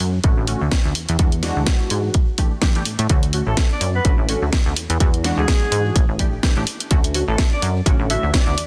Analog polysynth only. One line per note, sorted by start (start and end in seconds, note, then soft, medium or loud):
0.24 0.45 D3 medium
0.24 0.45 A3 medium
0.24 0.46 C#4 medium
0.24 0.46 F#4 loud
0.47 0.61 D3 medium
0.47 0.61 A3 medium
0.47 0.61 C#4 medium
0.47 0.62 F#4 medium
1.19 1.28 E3 medium
1.19 1.28 G#3 medium
1.19 1.28 D4 medium
1.19 1.28 F#4 medium
1.42 2.13 E3 medium
1.42 2.13 G#3 medium
1.42 2.14 D4 medium
1.42 2.14 F#4 loud
2.38 2.52 E3 medium
2.38 2.52 A3 medium
2.38 2.52 D4 medium
2.38 2.52 G4 medium
2.62 2.72 E3 medium
2.62 2.72 A3 medium
2.62 2.72 D4 medium
2.62 2.73 G4 medium
2.75 2.82 E3 medium
2.75 2.82 A3 medium
2.75 2.82 D4 medium
2.75 2.82 G4 medium
3.09 3.18 D3 loud
3.09 3.18 A3 medium
3.09 3.18 C#4 medium
3.09 3.18 F#4 loud
3.33 3.42 D3 medium
3.33 3.42 A3 medium
3.33 3.42 C#4 medium
3.33 3.42 F#4 medium
4.05 4.26 D3 medium
4.05 4.26 A3 medium
4.05 4.27 C#4 medium
4.05 4.27 F#4 loud
4.29 4.42 D3 medium
4.29 4.42 A3 medium
4.29 4.43 C#4 medium
4.29 4.43 F#4 medium
5.00 5.09 E3 medium
5.00 5.09 G#3 medium
5.00 5.09 D4 medium
5.00 5.09 F#4 medium
5.24 5.94 E3 medium
5.24 5.94 G#3 medium
5.24 5.95 D4 medium
5.24 5.95 F#4 loud
6.19 6.33 E3 medium
6.19 6.33 A3 medium
6.19 6.33 D4 medium
6.19 6.33 G4 medium
6.43 6.53 E3 medium
6.43 6.54 A3 medium
6.43 6.54 D4 medium
6.43 6.54 G4 medium
6.57 6.63 E3 medium
6.57 6.63 A3 medium
6.57 6.63 D4 medium
6.57 6.64 G4 medium
6.90 6.99 D3 loud
6.90 6.99 A3 medium
6.90 6.99 C#4 medium
6.90 6.99 F#4 loud
7.15 7.23 D3 medium
7.15 7.23 A3 medium
7.15 7.23 C#4 medium
7.15 7.23 F#4 medium
7.86 8.07 D3 medium
7.86 8.07 A3 medium
7.86 8.08 C#4 medium
7.86 8.08 F#4 loud
8.10 8.23 D3 medium
8.10 8.23 A3 medium
8.10 8.24 C#4 medium
8.10 8.24 F#4 medium